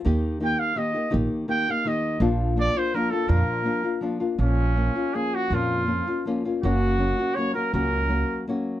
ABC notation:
X:1
M:3/4
L:1/8
Q:1/4=163
K:Bb
V:1 name="Trumpet"
z2 g f e2 | z2 g f e2 | z2 d c B A | B4 z2 |
[K:Bbm] D4 A G | F4 z2 | G4 d B | B4 z2 |]
V:2 name="Nylon-string guitar"
[E,B,EG]2 [E,B,EG]2 [E,B,EG] [B,EG] | [E,B,EG]2 [E,B,EG] [B,EG] [E,B,EG]2 | [B,,F,B,DF]2 [F,B,DF] [B,DF] [F,B,DF] [B,DF] | [B,,F,B,DF]2 [F,B,DF] [B,DF] [F,B,DF] [B,DF] |
[K:Bbm] [B,,F,B,DF]2 [F,B,DF] [B,DF] [F,B,DF]2 | [B,,F,B,DF]2 [F,B,DF] [B,DF] [F,B,DF] [B,DF] | [G,,D,G,B,DG]2 [G,B,DG] [G,B,DG] [G,B,DG] [G,B,DG] | [G,,D,G,B,DG]2 [G,B,DG]2 [G,B,DG]2 |]
V:3 name="Upright bass" clef=bass
E,,4 z2 | B,,, z4 z | B,,,4 z2 | F,, z4 z |
[K:Bbm] B,,,4 z2 | F,,4 z2 | G,,,4 z2 | D,,4 z2 |]